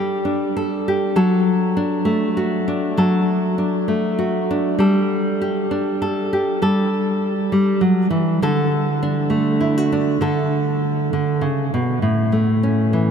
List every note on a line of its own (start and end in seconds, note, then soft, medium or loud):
0.00 1.16 G3 medium
0.00 0.25 D4 medium
0.00 0.86 G4 medium
0.00 0.56 A4 medium
0.25 1.76 D4 medium
0.57 1.16 A4 medium
0.88 1.14 G4 medium
1.16 2.92 F#3 medium
1.16 2.98 A4 medium
1.77 2.67 D4 medium
2.05 3.88 A3 medium
2.37 2.93 F#4 medium
2.68 3.58 D4 medium
2.97 4.75 F#3 medium
2.97 4.80 A4 medium
3.58 4.50 D4 medium
3.88 4.78 A3 medium
4.19 4.75 F#4 medium
4.51 5.71 D4 medium
4.79 6.60 G3 medium
4.79 6.01 A4 medium
5.42 6.31 G4 medium
5.71 8.13 D4 medium
6.02 6.62 A4 medium
6.33 6.58 G4 medium
6.62 7.51 G3 medium
6.62 8.43 A4 medium
7.52 7.81 G3 medium
7.81 8.10 F#3 medium
8.10 8.40 E3 medium
8.42 10.20 D3 medium
8.42 10.21 A4 medium
9.03 9.91 D4 medium
9.30 11.77 A3 medium
9.61 9.78 E4 medium
9.78 10.22 F#4 soft
9.92 10.18 D4 medium
10.21 11.11 D3 medium
10.21 13.11 A4 medium
11.13 11.42 D3 medium
11.41 11.72 C#3 medium
11.74 12.02 B2 medium
12.02 13.11 A2 medium
12.32 13.11 A3 soft
12.63 13.11 C#4 medium
12.93 13.11 E3 medium